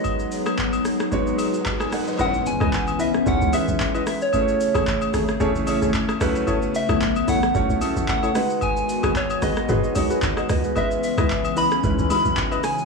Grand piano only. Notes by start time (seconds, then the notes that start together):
Already playing: G#3 B3 D#4 F#4 B4
1.12 G#3 B3 D#4 F#4 C#5
1.80 G#5
1.93 D#5 F#5
2.07 B4 D#5
2.19 G#3 C#4 D#4 E4 A#4
2.26 B4
3.26 G#3 C#4 D#4 E4 C#5
3.53 G#3 B3 C#4 E4 B4
4.33 A3 C#4 E4 G#4 B4
4.41 C#5
5.40 A3 C#4 E4 G#4 C#5
5.67 A3 C#4 E4 G#4 C#5
6.21 A3 C#4 E4 F#4 B4
7.54 A3 C#4 E4 F#4 C#5
7.81 A3 C#4 E4 F#4 A4
8.35 G#3 B3 D#4 F#4 B4
9.69 G#3 B3 D#4 F#4 G#4
9.96 G#3 B3 D#4 F#4 C#5
10.38 D#5 F#5
10.50 B4 D#5
10.65 G#4 B4
10.76 G#3 B3 C#4 E4 B4
11.83 G#3 C#4 D#4 E4 B4
12.10 G#3 C#4 D#4 E4 F#4